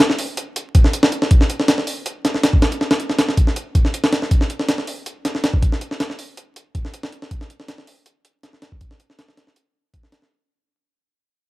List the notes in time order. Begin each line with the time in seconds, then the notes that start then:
0.10 snare
0.19 open hi-hat
0.37 closed hi-hat
0.56 closed hi-hat
0.75 kick, closed hi-hat
0.84 snare
0.93 closed hi-hat
1.03 snare
1.12 closed hi-hat
1.22 snare
1.31 kick, closed hi-hat
1.41 snare
1.50 closed hi-hat
1.60 snare
1.68 snare, closed hi-hat
1.78 snare
1.87 open hi-hat
2.06 closed hi-hat
2.25 snare, closed hi-hat
2.34 snare
2.43 snare, closed hi-hat
2.53 kick
2.62 snare
2.72 closed hi-hat
2.81 snare
2.91 snare
3.00 closed hi-hat
3.10 snare
3.19 snare, closed hi-hat
3.29 snare
3.37 kick, closed hi-hat
3.47 snare
3.56 closed hi-hat
3.75 kick, closed hi-hat
3.85 snare
3.94 closed hi-hat
4.04 snare
4.13 snare, closed hi-hat
4.22 snare
4.31 kick, closed hi-hat
4.41 snare
4.50 closed hi-hat
4.60 snare
4.69 snare, closed hi-hat
4.78 snare
4.87 open hi-hat
5.06 closed hi-hat
5.25 snare, closed hi-hat
5.35 snare
5.44 snare, closed hi-hat
5.53 kick
5.62 kick, closed hi-hat
5.72 snare
5.81 closed hi-hat
5.91 snare
6.00 snare, closed hi-hat
6.10 snare
6.19 open hi-hat
6.37 closed hi-hat
6.56 closed hi-hat
6.75 kick, closed hi-hat
6.85 snare
6.94 closed hi-hat
7.03 snare
7.12 closed hi-hat
7.22 snare
7.31 kick, closed hi-hat
7.41 snare
7.50 closed hi-hat
7.60 snare
7.68 snare, closed hi-hat
7.78 snare
7.87 open hi-hat
8.06 closed hi-hat
8.25 closed hi-hat
8.43 snare, closed hi-hat
8.53 snare
8.62 snare, closed hi-hat
8.72 kick
8.81 kick, closed hi-hat
8.91 snare
9.00 closed hi-hat
9.10 snare
9.19 snare, closed hi-hat
9.28 snare
9.37 snare, closed hi-hat
9.47 snare
9.56 closed hi-hat
9.94 kick, closed hi-hat
10.03 snare
10.12 snare, closed hi-hat
10.22 snare